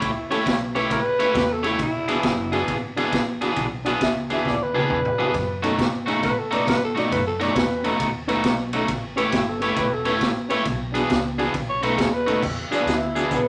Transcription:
Already playing: clean electric guitar A3 E4 G4 C#5, tenor saxophone E4
0.02 upright bass C#2, kick, snare, ride
0.30 clean electric guitar A3 E4 G4 C#5, reed electric piano C#4 G4 A4, muted upright bass stroke, snare, ride
0.46 upright bass B1, kick, snare, ride
0.75 clean electric guitar A3 E4 G4 C#5, reed electric piano C#4 G4 B4, snare, ride
0.90 upright bass A1, tenor saxophone B4, kick, snare, ride
1.19 clean electric guitar A3 E4 G4 C#5, reed electric piano C#4 G4 B4, snare, ride
1.35 upright bass E2, kick, snare, ride
1.53 tenor saxophone A4
1.63 clean electric guitar A3 E4 G4 C#5, reed electric piano C#4 G4 A4, snare, ride
1.67 tenor saxophone E4
1.79 upright bass E1, tenor saxophone E4, kick, snare, ride
2.08 clean electric guitar E3 B3 D4 G#4, reed electric piano D4 F#4 G#4, snare, ride
2.23 upright bass F#1, kick, snare, ride
2.51 clean electric guitar E3 B3 D4 G#4, reed electric piano D4 F#4 G#4, snare, ride
2.68 upright bass G#1, kick, snare, ride
2.97 clean electric guitar E3 B3 D4 G#4, reed electric piano D4 F#4 G#4, snare, ride
3.12 upright bass A1, kick, snare, ride
3.41 clean electric guitar E3 B3 D4 G#4, reed electric piano D4 F#4 G#4, muted upright bass stroke, snare, ride
3.56 upright bass B1, kick, snare, ride
3.85 clean electric guitar E3 B3 D4 G#4, reed electric piano D4 F#4 G#4, snare, ride
4.01 upright bass C#2, tenor saxophone E5, kick, snare, ride
4.30 clean electric guitar E3 B3 D4 G#4, reed electric piano D4 F#4 G#4, tenor saxophone E5, snare, ride
4.45 upright bass D2, tenor saxophone D5, kick, snare
4.63 tenor saxophone B4
4.74 clean electric guitar E3 B3 D4 G#4, reed electric piano D4 F#4 B4, high tom
4.79 tenor saxophone B4
4.90 upright bass E2, kick, mid tom
5.05 mid tom
5.18 clean electric guitar E3 B3 D4 G#4, reed electric piano D4 F#4 B4, muted upright bass stroke, floor tom
5.34 upright bass F#2, kick, snare, ride
5.62 clean electric guitar B2 A3 D#4 F#4, reed electric piano C#4 D#4 A4, snare, ride
5.79 upright bass G#2, kick, snare, ride
6.06 clean electric guitar B2 A3 D#4 F#4, reed electric piano C#4 D#4 G#4, snare, ride
6.23 upright bass A2, tenor saxophone B4, kick, snare, ride
6.39 tenor saxophone A4
6.51 clean electric guitar B2 A3 D#4 F#4, reed electric piano C#4 D#4 B4, tenor saxophone D5, snare, ride
6.67 upright bass G#2, tenor saxophone B4, kick, snare, ride
6.84 tenor saxophone A4
6.95 clean electric guitar B2 A3 D#4 F#4, reed electric piano C#4 D#4 F#4, tenor saxophone D5, snare, ride
7.12 upright bass F#2, tenor saxophone B4, kick, snare, ride
7.27 tenor saxophone A4
7.40 clean electric guitar B2 A3 D#4 F#4, reed electric piano C#4 D#4 A4, tenor saxophone D5, snare, ride
7.55 upright bass E2, tenor saxophone B4, kick, snare, ride
7.83 clean electric guitar B2 A3 D#4 F#4, reed electric piano C#4 D#4 A4, snare, ride
8.00 upright bass D#2, kick, snare, ride
8.28 clean electric guitar B2 A3 D#4 F#4, reed electric piano C#4 D#4 B4, snare, ride
8.44 upright bass B1, kick, snare, ride
8.73 clean electric guitar B2 A3 D#4 F#4, reed electric piano C#4 D#4 A4, snare, ride
8.88 upright bass A1, kick, snare, ride
9.16 clean electric guitar A3 E4 G4 C#5, reed electric piano C#4 G4 B4, snare, ride
9.32 upright bass G1, kick, snare, ride
9.36 tenor saxophone E4
9.49 tenor saxophone A4
9.59 clean electric guitar A3 E4 G4 C#5, reed electric piano C#4 G4 B4, snare, ride
9.76 upright bass E1, tenor saxophone B4, kick, snare, ride
9.93 tenor saxophone A4
10.05 clean electric guitar A3 E4 G4 C#5, reed electric piano C#4 G4 B4, snare, ride
10.20 upright bass A1, kick, snare, ride
10.49 clean electric guitar A3 E4 G4 C#5, reed electric piano C#4 G4 B4, snare, ride
10.65 upright bass B1, kick, snare, ride
10.92 clean electric guitar E3 B3 D4 G#4, reed electric piano D4 F#4 G#4, ride
10.96 snare
11.10 upright bass C#2, kick, snare, ride
11.38 clean electric guitar E3 B3 D4 G#4, reed electric piano D4 F#4 G#4, snare, ride
11.54 upright bass B1, kick, snare, ride
11.69 tenor saxophone C#5
11.81 clean electric guitar B2 A3 D#4 F#4, reed electric piano C#4 D#4 A4, tenor saxophone B4, snare, ride
11.97 upright bass D#2, tenor saxophone G#4, kick, snare, ride
12.14 tenor saxophone B4
12.26 clean electric guitar B2 A3 D#4 F#4, reed electric piano C#4 D#4 A4, snare, ride
12.43 upright bass E2, kick, snare, crash
12.71 clean electric guitar E3 B3 D4 G#4, reed electric piano D4 F#4 G#4, muted upright bass stroke, snare, closed hi-hat
12.75 tenor saxophone D4
12.86 upright bass D2, snare, closed hi-hat
12.90 tenor saxophone E4
13.14 clean electric guitar E3 B3 D4 G#4, reed electric piano D4 F#4 G#4, snare, closed hi-hat
13.31 upright bass C#2, tenor saxophone B3, kick, snare, closed hi-hat

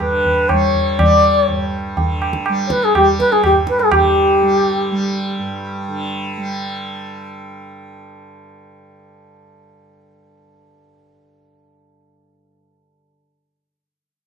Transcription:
Already playing: tanpura G2 G3
0.00 tanpura D3, bansuri B4, tabla na, tabla ge
0.25 tabla ge
0.49 tanpura G3, bansuri C#5, tabla na, tabla ge
0.74 tabla ge
0.99 tanpura G3, bansuri D5, tabla na, tabla ge
1.41 bansuri C#5
1.48 tanpura G2, tabla tin, tabla ge
1.97 tanpura D3, tabla tin, tabla ge
2.22 tabla na
2.33 tabla ke
2.46 tanpura G3, tabla na
2.67 bansuri C#5, tabla ke
2.71 bansuri B4
2.82 bansuri G#4, tabla te
2.95 tanpura G3, bansuri G4, tabla na, tabla ge
3.19 bansuri B4, tabla ke
3.32 bansuri G#4, tabla te
3.44 tanpura G2, bansuri G4, tabla na, tabla ge
3.67 bansuri B4, tabla ke
3.79 bansuri G#4, tabla te
3.92 tanpura D3, bansuri G4, tabla na, tabla ge
4.42 tanpura G3
4.91 tanpura G3
5.39 tanpura G2
5.88 tanpura D3
6.37 tanpura G3

